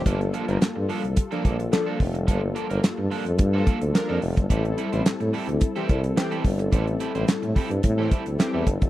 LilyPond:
<<
  \new Staff \with { instrumentName = "Analog polysynth" } { \time 4/4 \key g \dorian \tempo 4 = 108 <g bes f' a'>1~ | <g bes f' a'>1 | <g c' e' a'>1~ | <g c' e' a'>1 | }
  \new Staff \with { instrumentName = "Analog polysynth" } { \time 4/4 \key g \dorian r2 r16 <f d' a'>16 r8 <f d' a'>8 r8 | r2 r16 <f d' a'>16 r8 <f d' bes'>8 r8 | r2 r16 <e c' g'>16 r8 <e c' g'>8 r8 | r2 r16 <e c' g'>16 r8 <e c' g'>8 r8 | }
  \new Staff \with { instrumentName = "Clean electric guitar" } { \time 4/4 \key g \dorian <f bes d' a'>16 r16 <f bes d' a'>16 <f bes d' bes'>16 r8 <f bes d' a'>16 r8 <f bes d' a'>16 <f bes d' a'>16 r8 <f bes d' a'>16 r8 | <f bes d' a'>16 r16 <f bes d' a'>16 <f bes d' bes'>16 r8 <f bes d' a'>16 r8 <f bes d' a'>16 <f bes d' a'>16 r8 <f bes d' a'>16 r8 | <g c' e' a'>16 r16 <g c' e' a'>16 <g c' e' c''>16 r8 <g c' e' a'>16 r8 <g c' e' a'>16 <g c' e' a'>16 r8 <g c' e' a'>16 r8 | <g c' e' a'>16 r16 <g c' e' a'>16 <g c' e' c''>16 r8 <g c' e' a'>16 r8 <g c' e' a'>16 <g c' e' a'>16 r8 <g c' e' a'>16 r8 | }
  \new Staff \with { instrumentName = "Tuba" } { \clef bass \time 4/4 \key g \dorian g,,8 r16 g,,16 r16 g,16 r16 c,16 r8 bes,,8 r8 f,,8 | g,,8 r16 g,,16 r16 g,16 r16 f,16 g,8 r16 d,16 r16 f,16 f,,16 g,,16 | a,,8 r16 a,,16 r16 a,16 r16 d,16 r8 c,8 r8 g,,8 | a,,8 r16 a,,16 a,16 a,16 r16 g,16 a,8 r16 d,16 r16 e,16 g,,16 f,,16 | }
  \new DrumStaff \with { instrumentName = "Drums" } \drummode { \time 4/4 <hh bd>16 hh16 hh16 hh16 <hc hh sn>8 hho16 hh16 <hh bd>16 hh16 <hh bd>16 hh16 <hc hh sn>8 <hho bd>16 hh16 | <hh bd>8 hh16 hh16 <hc hh sn>8 hho16 hh16 <hh bd>8 <hh bd>16 hh16 <hc hh sn>8 hho16 <hh bd>16 | <hh bd>16 hh16 hh16 hh16 <hc hh sn>16 hh16 hho16 hh16 <hh bd>16 hh16 <hh bd>16 hh16 <hc hh sn>16 hh16 <hho bd>16 hh16 | <hh bd>16 hh16 hh16 hh16 <hc hh sn>16 hh16 <hho bd>16 hh16 <hh bd>8 <hh bd>16 hh16 <hc hh sn>8 <hh bd>16 <hh bd>16 | }
>>